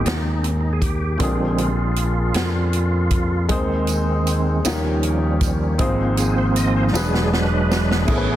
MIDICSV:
0, 0, Header, 1, 5, 480
1, 0, Start_track
1, 0, Key_signature, -4, "major"
1, 0, Tempo, 764331
1, 761, Time_signature, 6, 3, 24, 8
1, 5250, End_track
2, 0, Start_track
2, 0, Title_t, "Upright piano"
2, 0, Program_c, 0, 0
2, 0, Control_c, 0, 64, 127
2, 0, Note_on_c, 0, 44, 51
2, 0, Note_on_c, 0, 58, 58
2, 0, Note_on_c, 0, 60, 49
2, 0, Note_on_c, 0, 63, 49
2, 0, Note_on_c, 0, 67, 51
2, 0, Note_on_c, 0, 68, 62
2, 726, Note_off_c, 0, 58, 0
2, 731, Note_off_c, 0, 60, 0
2, 736, Note_on_c, 0, 58, 58
2, 737, Note_off_c, 0, 63, 0
2, 739, Note_off_c, 0, 67, 0
2, 745, Note_off_c, 0, 68, 0
2, 745, Note_on_c, 0, 60, 52
2, 755, Note_on_c, 0, 46, 57
2, 756, Note_on_c, 0, 62, 55
2, 765, Note_on_c, 0, 67, 55
2, 769, Control_c, 0, 64, 0
2, 774, Note_off_c, 0, 44, 0
2, 774, Note_on_c, 0, 68, 66
2, 886, Control_c, 0, 64, 127
2, 1454, Note_off_c, 0, 46, 0
2, 2164, Note_off_c, 0, 58, 0
2, 2168, Note_off_c, 0, 60, 0
2, 2174, Note_off_c, 0, 62, 0
2, 2179, Note_off_c, 0, 67, 0
2, 2183, Note_off_c, 0, 68, 0
2, 2189, Note_on_c, 0, 56, 73
2, 2196, Note_on_c, 0, 60, 64
2, 2199, Note_on_c, 0, 63, 68
2, 2201, Note_on_c, 0, 51, 71
2, 2202, Note_on_c, 0, 68, 62
2, 2208, Note_on_c, 0, 72, 79
2, 2210, Control_c, 0, 64, 0
2, 2319, Control_c, 0, 64, 127
2, 2895, Note_off_c, 0, 51, 0
2, 2914, Note_off_c, 0, 63, 0
2, 2915, Note_off_c, 0, 56, 0
2, 2918, Note_off_c, 0, 60, 0
2, 2918, Note_on_c, 0, 61, 79
2, 2921, Note_off_c, 0, 68, 0
2, 2924, Note_off_c, 0, 72, 0
2, 2924, Note_on_c, 0, 63, 69
2, 2925, Note_on_c, 0, 65, 69
2, 2926, Note_on_c, 0, 51, 78
2, 2930, Control_c, 0, 64, 0
2, 2934, Note_on_c, 0, 66, 56
2, 2939, Note_on_c, 0, 70, 81
2, 2968, Note_off_c, 0, 66, 0
2, 2972, Note_on_c, 0, 67, 69
2, 3055, Control_c, 0, 64, 127
2, 3618, Note_off_c, 0, 51, 0
2, 3628, Note_off_c, 0, 63, 0
2, 3631, Note_on_c, 0, 60, 79
2, 3632, Note_off_c, 0, 65, 0
2, 3637, Note_on_c, 0, 63, 69
2, 3639, Note_off_c, 0, 61, 0
2, 3640, Note_on_c, 0, 44, 72
2, 3641, Note_on_c, 0, 65, 67
2, 3646, Note_on_c, 0, 68, 70
2, 3649, Note_off_c, 0, 70, 0
2, 3649, Control_c, 0, 64, 0
2, 3655, Note_on_c, 0, 72, 81
2, 3666, Note_off_c, 0, 67, 0
2, 3752, Control_c, 0, 64, 127
2, 4334, Note_off_c, 0, 44, 0
2, 4353, Note_on_c, 0, 62, 66
2, 4354, Note_off_c, 0, 60, 0
2, 4357, Note_off_c, 0, 63, 0
2, 4358, Note_off_c, 0, 68, 0
2, 4360, Note_off_c, 0, 65, 0
2, 4360, Note_on_c, 0, 64, 56
2, 4364, Note_on_c, 0, 52, 62
2, 4365, Note_on_c, 0, 66, 57
2, 4366, Note_off_c, 0, 72, 0
2, 4366, Control_c, 0, 64, 0
2, 4367, Note_on_c, 0, 68, 58
2, 4371, Note_on_c, 0, 71, 74
2, 4463, Control_c, 0, 64, 127
2, 5052, Note_on_c, 0, 61, 55
2, 5055, Note_off_c, 0, 52, 0
2, 5057, Note_off_c, 0, 64, 0
2, 5065, Note_off_c, 0, 68, 0
2, 5067, Note_on_c, 0, 64, 48
2, 5072, Note_on_c, 0, 45, 51
2, 5074, Note_off_c, 0, 62, 0
2, 5074, Note_on_c, 0, 68, 56
2, 5080, Note_off_c, 0, 66, 0
2, 5083, Note_off_c, 0, 71, 0
2, 5083, Note_on_c, 0, 69, 49
2, 5087, Control_c, 0, 64, 0
2, 5095, Note_on_c, 0, 70, 51
2, 5126, Note_off_c, 0, 70, 0
2, 5130, Note_on_c, 0, 71, 66
2, 5188, Control_c, 0, 64, 127
2, 5250, Note_off_c, 0, 45, 0
2, 5250, Note_off_c, 0, 61, 0
2, 5250, Note_off_c, 0, 64, 0
2, 5250, Note_off_c, 0, 68, 0
2, 5250, Note_off_c, 0, 69, 0
2, 5250, Note_off_c, 0, 71, 0
2, 5250, End_track
3, 0, Start_track
3, 0, Title_t, "Tonewheel organ"
3, 0, Program_c, 1, 16
3, 45, Note_on_c, 1, 63, 72
3, 264, Note_on_c, 1, 60, 81
3, 290, Note_off_c, 1, 63, 0
3, 322, Note_off_c, 1, 60, 0
3, 380, Note_on_c, 1, 63, 79
3, 457, Note_on_c, 1, 68, 63
3, 461, Note_off_c, 1, 63, 0
3, 510, Note_off_c, 1, 68, 0
3, 512, Note_on_c, 1, 67, 79
3, 741, Note_on_c, 1, 50, 52
3, 742, Note_on_c, 1, 60, 53
3, 743, Note_on_c, 1, 53, 48
3, 743, Note_on_c, 1, 56, 47
3, 749, Note_on_c, 1, 65, 85
3, 764, Note_off_c, 1, 67, 0
3, 859, Note_off_c, 1, 65, 0
3, 996, Note_on_c, 1, 65, 88
3, 1070, Note_off_c, 1, 50, 0
3, 1070, Note_off_c, 1, 60, 0
3, 1071, Note_off_c, 1, 53, 0
3, 1071, Note_off_c, 1, 56, 0
3, 2174, Note_off_c, 1, 65, 0
3, 2190, Note_on_c, 1, 56, 47
3, 2192, Note_on_c, 1, 51, 53
3, 2192, Note_on_c, 1, 60, 60
3, 2890, Note_off_c, 1, 56, 0
3, 2891, Note_off_c, 1, 51, 0
3, 2891, Note_off_c, 1, 60, 0
3, 2908, Note_on_c, 1, 53, 54
3, 2918, Note_on_c, 1, 55, 49
3, 2926, Note_on_c, 1, 61, 57
3, 3609, Note_off_c, 1, 53, 0
3, 3613, Note_off_c, 1, 55, 0
3, 3618, Note_off_c, 1, 61, 0
3, 3630, Note_on_c, 1, 53, 55
3, 3641, Note_on_c, 1, 60, 60
3, 3642, Note_on_c, 1, 58, 50
3, 3882, Note_on_c, 1, 68, 76
3, 3992, Note_off_c, 1, 68, 0
3, 4008, Note_on_c, 1, 72, 84
3, 4060, Note_off_c, 1, 72, 0
3, 4123, Note_on_c, 1, 75, 97
3, 4233, Note_off_c, 1, 75, 0
3, 4247, Note_on_c, 1, 72, 92
3, 4299, Note_off_c, 1, 72, 0
3, 4329, Note_off_c, 1, 53, 0
3, 4334, Note_off_c, 1, 60, 0
3, 4335, Note_off_c, 1, 58, 0
3, 4341, Note_on_c, 1, 54, 54
3, 4344, Note_on_c, 1, 56, 48
3, 4348, Note_on_c, 1, 62, 55
3, 4366, Note_on_c, 1, 68, 84
3, 4585, Note_off_c, 1, 68, 0
3, 4611, Note_on_c, 1, 71, 102
3, 5043, Note_off_c, 1, 54, 0
3, 5044, Note_off_c, 1, 56, 0
3, 5047, Note_off_c, 1, 62, 0
3, 5054, Note_on_c, 1, 57, 50
3, 5058, Note_off_c, 1, 71, 0
3, 5062, Note_on_c, 1, 59, 60
3, 5064, Note_on_c, 1, 68, 86
3, 5067, Note_on_c, 1, 61, 62
3, 5250, Note_off_c, 1, 57, 0
3, 5250, Note_off_c, 1, 59, 0
3, 5250, Note_off_c, 1, 61, 0
3, 5250, Note_off_c, 1, 68, 0
3, 5250, End_track
4, 0, Start_track
4, 0, Title_t, "Picked electric bass"
4, 0, Program_c, 2, 34
4, 36, Note_on_c, 2, 39, 80
4, 734, Note_off_c, 2, 39, 0
4, 755, Note_on_c, 2, 34, 83
4, 1453, Note_off_c, 2, 34, 0
4, 1474, Note_on_c, 2, 41, 83
4, 2199, Note_off_c, 2, 41, 0
4, 2199, Note_on_c, 2, 39, 101
4, 2895, Note_off_c, 2, 39, 0
4, 2927, Note_on_c, 2, 39, 97
4, 3637, Note_on_c, 2, 32, 100
4, 3646, Note_off_c, 2, 39, 0
4, 4332, Note_off_c, 2, 32, 0
4, 4358, Note_on_c, 2, 28, 100
4, 5051, Note_off_c, 2, 28, 0
4, 5080, Note_on_c, 2, 33, 84
4, 5250, Note_off_c, 2, 33, 0
4, 5250, End_track
5, 0, Start_track
5, 0, Title_t, "Drums"
5, 36, Note_on_c, 9, 42, 60
5, 48, Note_on_c, 9, 38, 99
5, 98, Note_off_c, 9, 42, 0
5, 111, Note_off_c, 9, 38, 0
5, 276, Note_on_c, 9, 42, 43
5, 339, Note_off_c, 9, 42, 0
5, 513, Note_on_c, 9, 36, 75
5, 513, Note_on_c, 9, 42, 64
5, 576, Note_off_c, 9, 36, 0
5, 576, Note_off_c, 9, 42, 0
5, 751, Note_on_c, 9, 42, 77
5, 754, Note_on_c, 9, 36, 85
5, 814, Note_off_c, 9, 42, 0
5, 817, Note_off_c, 9, 36, 0
5, 993, Note_on_c, 9, 42, 52
5, 1056, Note_off_c, 9, 42, 0
5, 1232, Note_on_c, 9, 42, 52
5, 1295, Note_off_c, 9, 42, 0
5, 1470, Note_on_c, 9, 42, 65
5, 1483, Note_on_c, 9, 38, 108
5, 1533, Note_off_c, 9, 42, 0
5, 1546, Note_off_c, 9, 38, 0
5, 1714, Note_on_c, 9, 42, 43
5, 1776, Note_off_c, 9, 42, 0
5, 1950, Note_on_c, 9, 42, 66
5, 1954, Note_on_c, 9, 36, 76
5, 2013, Note_off_c, 9, 42, 0
5, 2017, Note_off_c, 9, 36, 0
5, 2192, Note_on_c, 9, 42, 76
5, 2197, Note_on_c, 9, 36, 91
5, 2254, Note_off_c, 9, 42, 0
5, 2260, Note_off_c, 9, 36, 0
5, 2430, Note_on_c, 9, 42, 50
5, 2442, Note_on_c, 9, 54, 46
5, 2493, Note_off_c, 9, 42, 0
5, 2505, Note_off_c, 9, 54, 0
5, 2679, Note_on_c, 9, 42, 56
5, 2681, Note_on_c, 9, 54, 46
5, 2742, Note_off_c, 9, 42, 0
5, 2743, Note_off_c, 9, 54, 0
5, 2917, Note_on_c, 9, 42, 70
5, 2921, Note_on_c, 9, 54, 83
5, 2930, Note_on_c, 9, 38, 112
5, 2980, Note_off_c, 9, 42, 0
5, 2984, Note_off_c, 9, 54, 0
5, 2993, Note_off_c, 9, 38, 0
5, 3157, Note_on_c, 9, 42, 43
5, 3220, Note_off_c, 9, 42, 0
5, 3395, Note_on_c, 9, 42, 65
5, 3398, Note_on_c, 9, 36, 82
5, 3408, Note_on_c, 9, 54, 57
5, 3458, Note_off_c, 9, 42, 0
5, 3461, Note_off_c, 9, 36, 0
5, 3470, Note_off_c, 9, 54, 0
5, 3634, Note_on_c, 9, 42, 72
5, 3639, Note_on_c, 9, 36, 103
5, 3697, Note_off_c, 9, 42, 0
5, 3702, Note_off_c, 9, 36, 0
5, 3876, Note_on_c, 9, 42, 54
5, 3883, Note_on_c, 9, 54, 51
5, 3939, Note_off_c, 9, 42, 0
5, 3946, Note_off_c, 9, 54, 0
5, 4118, Note_on_c, 9, 42, 57
5, 4128, Note_on_c, 9, 54, 47
5, 4181, Note_off_c, 9, 42, 0
5, 4190, Note_off_c, 9, 54, 0
5, 4367, Note_on_c, 9, 54, 89
5, 4371, Note_on_c, 9, 38, 59
5, 4430, Note_off_c, 9, 54, 0
5, 4434, Note_off_c, 9, 38, 0
5, 4485, Note_on_c, 9, 38, 61
5, 4548, Note_off_c, 9, 38, 0
5, 4605, Note_on_c, 9, 38, 78
5, 4668, Note_off_c, 9, 38, 0
5, 4844, Note_on_c, 9, 38, 83
5, 4845, Note_on_c, 9, 54, 57
5, 4907, Note_off_c, 9, 38, 0
5, 4908, Note_off_c, 9, 54, 0
5, 4969, Note_on_c, 9, 38, 81
5, 5032, Note_off_c, 9, 38, 0
5, 5072, Note_on_c, 9, 49, 74
5, 5076, Note_on_c, 9, 36, 89
5, 5135, Note_off_c, 9, 49, 0
5, 5139, Note_off_c, 9, 36, 0
5, 5250, End_track
0, 0, End_of_file